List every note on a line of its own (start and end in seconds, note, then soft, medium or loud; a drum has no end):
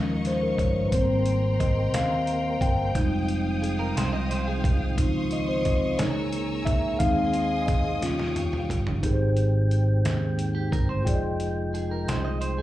0.00 0.54 D#2 medium
0.00 0.88 C#3 medium
0.00 0.36 F3 soft
0.00 0.92 F3 medium
0.00 0.36 G#3 soft
0.00 0.37 C#4 medium
0.00 0.92 D#4 medium
0.00 2.90 A#4 medium
0.00 0.90 D#5 medium
0.00 0.91 F5 medium
0.00 0.91 C#6 medium
0.25 0.43 C5 medium
0.25 snare soft
0.25 closed hi-hat medium
0.43 0.58 A#4 medium
0.58 0.90 G1 medium
0.58 0.86 C#5 medium
0.58 kick medium
0.58 closed hi-hat soft
0.86 0.92 B4 medium
0.92 1.94 G#1 medium
0.92 1.89 G3 soft
0.92 2.94 G3 medium
0.92 1.90 A#3 soft
0.92 2.94 A#3 medium
0.92 1.90 C4 medium
0.92 2.93 C4 medium
0.92 1.62 C5 medium
0.92 4.93 G5 medium
0.92 2.92 A#5 medium
0.92 2.93 C6 medium
0.92 kick medium
0.92 closed hi-hat medium
1.26 closed hi-hat medium
1.60 1.95 D#5 medium
1.60 kick medium
1.60 closed hi-hat medium
1.94 2.57 D#2 medium
1.94 2.63 F5 medium
1.94 snare loud
1.94 closed hi-hat medium
2.27 closed hi-hat medium
2.61 2.92 G1 medium
2.61 2.92 G5 loud
2.61 kick loud
2.61 closed hi-hat medium
2.94 3.92 F1 loud
2.94 4.96 F3 medium
2.94 3.92 G3 medium
2.94 3.93 G#3 soft
2.94 4.96 C4 medium
2.94 4.95 D#4 medium
2.94 3.93 D#4 medium
2.94 5.96 F5 medium
2.94 4.96 G5 medium
2.94 4.95 D#6 medium
2.94 kick medium
2.94 closed hi-hat medium
3.28 closed hi-hat medium
3.62 3.78 G#4 medium
3.62 closed hi-hat medium
3.79 3.95 A#4 medium
3.97 4.60 C2 medium
3.97 4.12 C5 medium
3.97 snare medium
3.97 closed hi-hat medium
4.13 4.29 D#5 medium
4.31 4.46 C5 medium
4.31 snare soft
4.31 closed hi-hat medium
4.48 4.95 G#4 medium
4.64 4.95 C2 medium
4.64 kick loud
4.64 closed hi-hat medium
4.97 5.95 C#2 loud
4.97 6.98 C#3 medium
4.97 5.97 D#3 medium
4.97 5.43 F3 soft
4.97 5.98 C4 medium
4.97 5.43 C4 medium
4.97 5.43 D#4 medium
4.97 5.97 F4 medium
4.97 5.99 C6 medium
4.97 6.99 C#6 medium
4.97 5.99 D#6 medium
4.97 kick medium
4.97 closed hi-hat medium
5.31 5.48 D#5 medium
5.31 closed hi-hat medium
5.49 5.64 C5 medium
5.65 6.00 D#5 medium
5.65 kick medium
5.65 closed hi-hat medium
5.98 6.62 C#2 medium
5.98 6.99 E3 medium
5.98 6.44 E3 medium
5.98 6.99 A#3 medium
5.98 6.44 A#3 soft
5.98 6.44 D#4 medium
5.98 6.98 G#4 medium
5.98 6.68 C#5 medium
5.98 6.99 G#5 medium
5.98 6.99 A#5 medium
5.98 6.99 E6 medium
5.98 snare loud
5.98 closed hi-hat medium
6.33 closed hi-hat medium
6.65 6.98 C#2 medium
6.65 7.01 E5 loud
6.65 kick loud
6.65 closed hi-hat medium
6.99 7.98 D#2 loud
6.99 9.01 D#3 medium
6.99 7.97 G#3 soft
6.99 8.00 G#3 medium
6.99 8.00 C4 medium
6.99 7.98 C4 soft
6.99 7.98 D#4 medium
6.99 8.00 G#4 medium
6.99 8.01 D#5 medium
6.99 7.63 F5 loud
6.99 8.01 G#5 medium
6.99 8.01 C6 medium
6.99 9.01 D#6 medium
6.99 kick medium
6.99 closed hi-hat medium
7.33 closed hi-hat medium
7.67 7.99 D#5 medium
7.67 kick loud
7.67 closed hi-hat medium
8.01 8.71 D#2 medium
8.01 8.99 G3 soft
8.01 9.02 G3 medium
8.01 9.02 C#4 medium
8.01 8.99 C#4 soft
8.01 9.02 F4 medium
8.01 9.00 F4 medium
8.01 9.03 F5 medium
8.01 9.03 G5 medium
8.01 9.03 C#6 medium
8.01 snare medium
8.01 closed hi-hat medium
8.19 snare medium
8.36 closed hi-hat medium
8.36 high tom medium
8.53 mid tom medium
8.69 9.00 G1 medium
8.69 closed hi-hat soft
8.69 mid tom loud
8.87 floor tom medium
9.01 10.01 G#1 medium
9.01 10.01 G#2 medium
9.01 11.04 D#3 medium
9.01 12.62 G#3 medium
9.01 11.04 C4 medium
9.01 11.01 D#4 medium
9.01 11.02 G4 medium
9.01 11.03 G#4 medium
9.01 11.04 G5 medium
9.01 kick medium
9.01 closed hi-hat medium
9.07 9.11 A#4 medium
9.13 11.07 C5 medium
9.37 closed hi-hat soft
9.71 closed hi-hat soft
10.05 10.68 D#2 medium
10.05 snare medium
10.05 closed hi-hat medium
10.39 closed hi-hat medium
10.55 10.71 G4 medium
10.72 11.03 G1 medium
10.72 10.88 A#4 medium
10.72 kick loud
10.72 closed hi-hat soft
10.89 11.21 C5 medium
11.04 12.04 F1 medium
11.04 12.62 F3 medium
11.04 12.62 D#4 medium
11.04 12.62 F4 medium
11.04 12.62 G#4 medium
11.04 12.62 G5 medium
11.04 kick medium
11.04 closed hi-hat medium
11.08 11.14 D5 medium
11.15 12.62 D#5 medium
11.40 closed hi-hat soft
11.74 11.90 G#4 medium
11.74 closed hi-hat soft
11.91 12.07 A#4 medium
12.08 12.62 C2 medium
12.08 12.24 C5 medium
12.08 snare loud
12.08 closed hi-hat medium
12.25 12.41 D#5 medium
12.41 12.57 C5 medium
12.41 closed hi-hat medium
12.58 12.62 G#4 medium